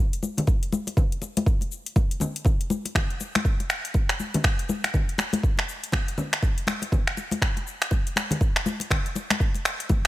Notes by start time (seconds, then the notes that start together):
0.13 closed hi-hat, shaker
0.23 high conga, shaker
0.37 closed hi-hat, high conga, low conga, shaker
0.47 kick, muted conga, shaker
0.63 closed hi-hat
0.72 high conga, shaker
0.87 closed hi-hat, muted conga, shaker
0.97 kick, low conga, shaker
1.12 closed hi-hat
1.22 muted conga, high conga, shaker
1.37 closed hi-hat, high conga, shaker
1.46 kick, shaker
1.61 closed hi-hat, muted conga, shaker
1.72 shaker
1.86 closed hi-hat, shaker
1.96 kick, muted conga, high conga, low conga, shaker
2.11 closed hi-hat, shaker
2.20 high conga, low conga, shaker
2.36 closed hi-hat, shaker
2.45 kick, muted conga, low conga, shaker
2.61 closed hi-hat
2.70 high conga, shaker
2.85 closed hi-hat, muted conga, shaker
2.95 finger snap, kick, low conga, shaker
3.10 closed hi-hat
3.20 muted conga, shaker
3.35 finger snap, closed hi-hat, high conga, shaker
3.45 kick, shaker
3.60 closed hi-hat, muted conga
3.70 finger snap, shaker
3.85 closed hi-hat, shaker
3.94 kick, muted conga, shaker
4.09 finger snap, closed hi-hat, shaker
4.20 high conga, shaker
4.34 closed hi-hat, high conga, low conga, shaker
4.44 finger snap, kick, muted conga, shaker
4.59 closed hi-hat
4.69 high conga, shaker
4.84 finger snap, closed hi-hat, muted conga, shaker
4.94 kick, low conga, shaker
5.09 closed hi-hat
5.18 finger snap, muted conga, high conga, shaker
5.33 closed hi-hat, high conga, shaker
5.43 kick, shaker
5.57 finger snap, closed hi-hat, muted conga
5.69 shaker
5.84 closed hi-hat, shaker
5.92 finger snap, kick, muted conga, high conga, low conga, shaker
6.08 closed hi-hat, shaker
6.18 high conga, low conga, shaker
6.33 finger snap, closed hi-hat, shaker
6.42 kick, muted conga, shaker
6.58 closed hi-hat
6.67 finger snap, high conga, shaker
6.82 closed hi-hat, muted conga, shaker
6.92 kick, low conga, shaker
7.07 finger snap, closed hi-hat
7.17 muted conga, shaker
7.31 closed hi-hat, high conga, shaker
7.42 finger snap, kick, shaker
7.57 closed hi-hat, muted conga
7.67 shaker
7.82 finger snap, closed hi-hat, shaker
7.91 kick, muted conga, shaker
8.07 closed hi-hat, shaker
8.16 finger snap, high conga, shaker
8.31 closed hi-hat, high conga, low conga, shaker
8.41 kick, muted conga, shaker
8.56 finger snap, closed hi-hat
8.66 high conga, shaker
8.80 closed hi-hat, muted conga, shaker
8.91 finger snap, kick, low conga, shaker
9.06 closed hi-hat, shaker
9.15 muted conga, high conga, shaker
9.30 finger snap, closed hi-hat, high conga, shaker
9.40 kick, shaker
9.54 closed hi-hat, muted conga, shaker
9.65 finger snap, shaker
9.80 closed hi-hat, shaker
9.89 kick, muted conga, high conga, low conga, shaker